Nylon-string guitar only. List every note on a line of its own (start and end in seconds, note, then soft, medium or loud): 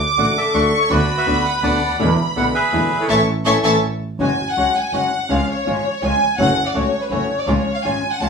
0.18 0.35 D3 medium
0.18 0.35 A3 medium
0.18 0.35 D4 medium
0.18 0.35 F#4 medium
0.54 0.71 D3 medium
0.54 0.71 A3 medium
0.54 0.71 D4 medium
0.54 0.71 F#4 medium
0.89 0.99 D3 medium
0.89 0.99 B3 medium
0.89 0.99 D4 medium
0.89 1.00 F#4 medium
1.26 1.43 D3 medium
1.26 1.44 B3 medium
1.26 1.44 D4 medium
1.26 1.44 F#4 medium
1.63 1.80 D3 medium
1.63 1.80 B3 medium
1.63 1.80 D4 medium
1.63 1.80 F#4 medium
1.99 2.08 B2 medium
1.99 2.08 D3 medium
1.99 2.08 G#3 medium
1.99 2.08 B3 medium
1.99 2.09 E4 medium
2.36 2.53 B2 medium
2.36 2.53 D3 medium
2.36 2.53 G#3 medium
2.36 2.53 B3 medium
2.36 2.53 E4 medium
2.73 2.89 B2 medium
2.73 2.90 D3 medium
2.73 2.90 G#3 medium
2.73 2.90 B3 medium
2.73 2.90 E4 medium
3.09 3.21 E3 medium
3.09 3.21 A3 medium
3.09 3.21 C#4 medium
3.46 3.58 E3 medium
3.46 3.57 A3 medium
3.46 3.58 C#4 medium
3.64 3.76 E3 medium
3.64 3.76 A3 medium
3.64 3.76 C#4 medium
4.20 4.29 F#3 medium
4.20 4.29 G#3 medium
4.20 4.29 C#4 medium
4.20 4.29 F#4 medium
4.57 4.74 F#3 soft
4.57 4.74 G#3 medium
4.57 4.74 C#4 soft
4.57 4.74 F#4 medium
4.92 5.10 F#3 soft
4.92 5.10 G#3 medium
4.92 5.10 C#4 medium
4.92 5.10 F#4 medium
5.29 5.38 C#3 medium
5.29 5.39 F3 medium
5.29 5.39 G#3 medium
5.29 5.39 C#4 medium
5.29 5.39 F4 medium
5.65 5.83 C#3 soft
5.65 5.83 F3 medium
5.65 5.83 G#3 medium
5.65 5.83 C#4 medium
5.65 5.84 F4 medium
6.02 6.19 C#3 medium
6.02 6.19 F3 medium
6.02 6.19 G#3 medium
6.02 6.19 C#4 medium
6.02 6.20 F4 medium
6.38 6.47 C#3 medium
6.38 6.47 F#3 medium
6.38 6.48 A3 medium
6.38 6.48 C#4 medium
6.38 6.48 F#4 medium
6.74 6.91 C#3 medium
6.74 6.92 F#3 medium
6.74 6.92 A3 medium
6.74 6.92 C#4 medium
6.74 6.92 F#4 medium
7.11 7.28 C#3 medium
7.11 7.28 F#3 soft
7.11 7.28 A3 medium
7.11 7.28 C#4 medium
7.11 7.28 F#4 medium
7.48 7.57 C#3 medium
7.48 7.57 F3 medium
7.48 7.57 G#3 medium
7.48 7.57 C#4 medium
7.48 7.57 F4 medium
7.85 8.02 C#3 medium
7.85 8.02 F3 medium
7.85 8.02 G#3 medium
7.85 8.02 C#4 medium
7.85 8.02 F4 medium
8.21 8.29 C#3 medium
8.21 8.29 F3 soft
8.21 8.29 G#3 medium
8.21 8.29 C#4 medium
8.21 8.29 F4 medium